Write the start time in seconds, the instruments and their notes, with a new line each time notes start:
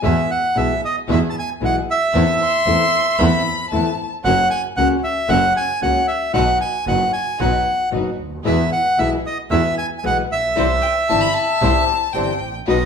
0.02 double bass E2, nylon-string guitar B2 E3 G#3 B3 E4, string section B3 E4 G#4, bandoneon E5
0.31 bandoneon F#5
0.55 double bass B1, nylon-string guitar B2 E3 G#3 B3 E4, string section B3 E4 G#4, bandoneon E5
0.85 bandoneon D#5
1.08 double bass E2, nylon-string guitar B2 E3 G#3 B3 E4, string section B3 E4 G#4, bandoneon E5
1.30 bandoneon A5
1.39 bandoneon G#5
1.61 double bass B1, nylon-string guitar B2 E3 G#3 B3 E4, string section B3 E4 G#4
1.65 bandoneon F#5
1.91 bandoneon E5
2.13 double bass E2, nylon-string guitar E3 A3 C4 E4, string section C4 E4 A4
2.41 violin C6
2.66 double bass E2, nylon-string guitar E3 A3 C4 E4, string section C4 E4 A4
3.19 double bass E2, nylon-string guitar E3 A3 C4 E4, string section C4 E4 A4, violin B5
3.71 double bass E2, nylon-string guitar E3 A3 C4 E4, string section C4 E4 A4, violin A5
4.24 double bass F#1, nylon-string guitar C#3 F#3 A#3 C#4 F#4, string section C#4 F#4 A#4, bandoneon F#5
4.50 bandoneon G#5
4.76 double bass C#2, nylon-string guitar C#3 F#3 A#3 C#4 F#4, string section C#4 F#4 A#4, bandoneon F#5
5.04 bandoneon E5
5.29 double bass F#1, nylon-string guitar C#3 F#3 A#3 C#4 F#4, string section C#4 F#4 A#4, bandoneon F#5
5.57 bandoneon G#5
5.81 double bass C#2, nylon-string guitar C#3 F#3 A#3 C#4 F#4, string section C#4 F#4 A#4, bandoneon F#5
6.08 bandoneon E5
6.33 double bass B1, nylon-string guitar B2 F#3 B3 D#4 F#4, string section D#4 F#4 B4, bandoneon F#5
6.61 bandoneon G#5
6.86 double bass F#1, nylon-string guitar B2 F#3 B3 D#4 F#4, string section D#4 F#4 B4, bandoneon F#5
7.13 bandoneon G#5
7.39 double bass B1, nylon-string guitar B2 F#3 B3 D#4 F#4, string section D#4 F#4 B4, bandoneon F#5
7.91 double bass F#1, nylon-string guitar B2 F#3 B3 D#4 F#4, string section D#4 F#4 B4
8.19 double bass D2
8.44 double bass E2, nylon-string guitar B2 E3 G#3 B3 E4, string section E4 G#4 B4, bandoneon E5
8.72 bandoneon F#5
8.98 double bass B1, nylon-string guitar B2 E3 G#3 B3 E4, string section E4 G#4 B4, bandoneon E5
9.26 bandoneon D#5
9.50 double bass E2, nylon-string guitar B2 E3 G#3 B3 E4, string section E4 G#4 B4, bandoneon E5
9.78 bandoneon G#5
9.98 bandoneon G#5
10.03 double bass B1, nylon-string guitar B2 E3 G#3 B3 E4, string section E4 G#4 B4, bandoneon F#5
10.31 double bass A#1, bandoneon E5
10.56 double bass C2, nylon-string guitar C3 E3 G3 C4 E4, string section E4 G4 C5
10.82 violin G5
11.09 double bass G1, nylon-string guitar C3 E3 G3 C4 E4, string section E4 G4 C5, violin A5
11.21 violin B5
11.34 violin A5
11.61 double bass C2, nylon-string guitar C3 E3 G3 C4 E4, string section E4 G4 C5
12.13 double bass G1, nylon-string guitar C3 E3 G3 C4 E4, string section E4 G4 C5, violin G5
12.41 double bass A1
12.66 double bass B1, nylon-string guitar B2 F#3 B3 D#4 F#4, string section D#4 F#4 B4, bandoneon D#5